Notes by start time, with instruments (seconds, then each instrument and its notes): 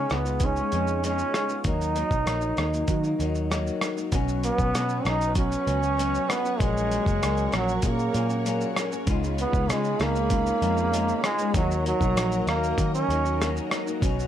Already playing: synth keys G#3 B3 D#4 F4, nylon-string guitar B3 F4, trombone C#4
0.09 picked electric bass C#2, nylon-string guitar C#3 G#3 B3 F4, trombone B3, cross-stick, closed hi-hat, shaker
0.25 nylon-string guitar G#3 B3 F4, shaker
0.40 synth keys G#3 B3 D#4 G#4, kick, closed hi-hat, shaker
0.45 trombone C#4
0.56 nylon-string guitar G#3 B3 F4, shaker
0.72 picked electric bass F2, nylon-string guitar C#3 G#3 B3 F4, closed hi-hat, shaker
0.87 shaker
1.03 nylon-string guitar C#3 G#3 B3 F4, trombone C#4, closed hi-hat, shaker
1.18 shaker
1.34 cross-stick, closed hi-hat, shaker
1.49 nylon-string guitar G#3 B3 F4, shaker
1.64 picked electric bass D#2, nylon-string guitar D#3 F#3 A#3 D#4, synth keys F#3 A#3 D#4 F#4, kick, closed hi-hat, shaker
1.69 trombone D#4
1.81 shaker
1.95 nylon-string guitar D#3 F#3 A#3 D#4, closed hi-hat, shaker
2.11 picked electric bass B1, kick, shaker
2.26 picked electric bass A#1, nylon-string guitar D#3 F#3 A#3 D#4, cross-stick, closed hi-hat, shaker
2.41 shaker
2.56 picked electric bass D#2, nylon-string guitar D#3 F#3 A#3 D#4, cross-stick, closed hi-hat, shaker
2.72 nylon-string guitar F#3 A#3 D#4, shaker
2.88 picked electric bass D#3, synth keys F#3 A#3 D#4 F#4, kick, closed hi-hat, shaker
3.03 nylon-string guitar F#3 A#3 D#4, shaker
3.18 picked electric bass D#2, nylon-string guitar D#3 F#3 A#3 D#4, closed hi-hat, shaker
3.35 shaker
3.50 nylon-string guitar D#3 F#3 A#3 D#4, cross-stick, closed hi-hat, shaker
3.67 shaker
3.81 cross-stick, closed hi-hat, shaker
3.97 nylon-string guitar F#3 A#3 D#4, shaker
4.12 picked electric bass B1, nylon-string guitar B2 F#3 B3 C#4, synth keys F#3 B3 C#4 F#4, string machine B4 C#5 F#5 C#6, kick, closed hi-hat, shaker
4.28 shaker
4.44 trombone B3, closed hi-hat, shaker
4.58 picked electric bass B1, nylon-string guitar F#3 B3 C#4, kick, shaker
4.74 nylon-string guitar B2 F#3 B3 C#4, picked electric bass B2, cross-stick, closed hi-hat, shaker
4.89 shaker
5.04 picked electric bass B1, nylon-string guitar B2 F#3 B3 C#4, trombone D#4, cross-stick, closed hi-hat, shaker
5.21 shaker
5.35 synth keys F#3 B3 C#4 F#4, trombone C#4, kick, closed hi-hat, shaker
5.52 shaker
5.65 picked electric bass C#2, nylon-string guitar B2 F#3 B3 C#4, closed hi-hat, shaker
5.81 nylon-string guitar F#3 B3 C#4, shaker
5.97 nylon-string guitar B2 F#3 B3 C#4, closed hi-hat, shaker
6.15 shaker
6.28 nylon-string guitar B2 F#3 B3 C#4, trombone B3, cross-stick, closed hi-hat, shaker
6.43 nylon-string guitar F#3 B3 C#4, shaker
6.58 picked electric bass A#1, nylon-string guitar A#2 F#3 A#3 C#4, synth keys F#3 A#3 C#4 F#4, trombone G#3, string machine A#4, kick, closed hi-hat, shaker
6.77 shaker
6.92 closed hi-hat, shaker
7.05 picked electric bass F#1, nylon-string guitar F#3 A#3 C#4, kick, shaker
7.21 picked electric bass C#2, nylon-string guitar A#2 F#3 A#3 C#4, cross-stick, closed hi-hat, shaker
7.37 shaker
7.51 picked electric bass A#1, nylon-string guitar A#2 F#3 A#3 C#4, cross-stick, closed hi-hat, shaker
7.56 trombone F#3
7.68 shaker
7.82 picked electric bass A#2, synth keys F#3 A#3 C#4 G#4, kick, closed hi-hat, shaker
7.87 trombone A#3
7.99 shaker
8.12 nylon-string guitar A#2 F#3 A#3 C#4, picked electric bass A#2, closed hi-hat, shaker
8.29 nylon-string guitar A#3 C#4, shaker
8.33 nylon-string guitar F#3
8.45 nylon-string guitar A#2 F#3 A#3 C#4, closed hi-hat, shaker
8.61 shaker
8.75 nylon-string guitar A#2 F#3 A#3 C#4, cross-stick, closed hi-hat, shaker
8.91 nylon-string guitar F#3 A#3 C#4, shaker
9.05 picked electric bass C#2, nylon-string guitar C#3 G#3 B3, synth keys G#3 B3 D#4, string machine G#4 F5 B5, kick, closed hi-hat, shaker
9.10 synth keys F4, nylon-string guitar F4
9.24 shaker
9.38 trombone B3, closed hi-hat, shaker
9.53 picked electric bass C#2, nylon-string guitar B3 F4, kick, shaker
9.57 nylon-string guitar G#3
9.68 nylon-string guitar C#3 G#3 B3 F4, picked electric bass C#3, trombone G#3, cross-stick, closed hi-hat, shaker
9.84 shaker
10.00 picked electric bass C#2, nylon-string guitar C#3 G#3 B3, trombone A#3, cross-stick, closed hi-hat, shaker
10.04 nylon-string guitar F4
10.15 nylon-string guitar G#3 F4, shaker
10.30 synth keys G#3 C#4 D#4 F4, kick, closed hi-hat, shaker
10.47 shaker
10.61 picked electric bass F2, nylon-string guitar C#3 G#3 B3 F4, closed hi-hat, shaker
10.76 nylon-string guitar G#3 B3 F4, shaker
10.92 nylon-string guitar C#3 G#3 F4, closed hi-hat, shaker
11.09 shaker
11.21 nylon-string guitar C#3 G#3 B3 F4, trombone G#3, cross-stick, closed hi-hat, shaker
11.38 nylon-string guitar B3 F4, shaker
11.42 nylon-string guitar G#3
11.54 picked electric bass D#2, nylon-string guitar D#3 F#3 A#3 D#4, synth keys F#3 A#3 D#4 F4, trombone F#3, string machine F#4 A#4 D#5 A#5, kick, closed hi-hat, shaker
11.63 synth keys F#4
11.71 shaker
11.86 trombone F#3, closed hi-hat, shaker
12.00 picked electric bass B1, nylon-string guitar F#3 A#3 D#4, kick, shaker
12.15 picked electric bass A#1, nylon-string guitar D#3 F#3 A#3 D#4, cross-stick, closed hi-hat, shaker
12.32 shaker
12.47 picked electric bass D#2, nylon-string guitar D#3 F#3 A#3 D#4, trombone A#3, cross-stick, closed hi-hat, shaker
12.64 shaker
12.77 picked electric bass D#3, synth keys F#3 A#3 D#4 F#4, kick, closed hi-hat, shaker
12.95 trombone C#4, shaker
13.08 picked electric bass D#2, nylon-string guitar D#3 F#3 A#3 D#4, closed hi-hat, shaker
13.25 nylon-string guitar F#3 A#3 D#4, shaker
13.40 nylon-string guitar D#3 F#3 A#3 D#4, cross-stick, closed hi-hat, shaker
13.57 shaker
13.70 nylon-string guitar D#3 F#3 A#3 D#4, cross-stick, closed hi-hat, shaker
13.86 nylon-string guitar F#3 A#3 D#4, shaker
14.00 picked electric bass B1, nylon-string guitar B2 F#3 B3 C#4, synth keys F#3 B3 C#4 F#4, string machine B4 C#5 B5, kick, closed hi-hat, shaker
14.19 shaker